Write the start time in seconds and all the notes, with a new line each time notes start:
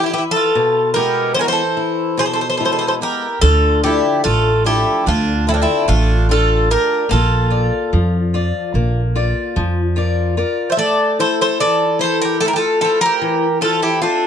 Already playing: E3
0.04 E4 G4
0.10 E4 G4 B4 E5
0.18 E4
0.31 A4
0.36 F4
0.55 B2
0.94 G#3 B3 E4 G4 A#4
1.34 E3 C5
1.39 G#4 A#4
1.44 F#4
1.48 C5
1.53 A4
1.77 E4
2.17 B2 G#4 C5
2.26 A4 C5
2.33 A4 C5
2.41 A4 C5
2.50 A4 C5
2.57 G#3 B3 E4 A4 C5
2.65 A4 C5
2.72 A4 C5
2.79 A4 C5
2.87 A4 C5
3.01 E4 G4 A#4
3.41 D2 D3 F4 A4
3.84 F3 D4 E4 G4 A4
4.24 A1 A3 F4 A4
4.65 F3 D4 E4 G4 A4
5.06 D2 D3 D4 F4
5.47 C4 D4 E4 F4 A4
5.54 A#3 D4
5.62 C4 E4
5.88 A1 A3 D4 F4
6.29 D4 F4 A4
6.70 D4 F4 G4 A#4
7.09 A#1 A#3 F4 A4
7.50 F4 D5
7.93 F2 F3
8.34 F4 D5
8.74 A#1 A#3
9.16 F4 D5
9.56 F2 F3
9.96 F4 A#4 D5
10.37 F4 A#4 D5
10.70 C5 E5
10.77 A3 A4 D5
11.19 E4 A4 C5
11.41 A4 C5
11.60 E3 A4 D5
11.99 E4 A4 C5
12.04 A4
12.21 G4 A#4
12.40 A3 A4
12.46 E4 A#4
12.53 G4 A4
12.58 F4
12.81 E4 F4 A4 C5
13.01 A#4
13.06 G4
13.22 E3
13.61 F4 A4 C5 E5
13.82 E4 G4
14.01 C4 D4 F4 A4 C5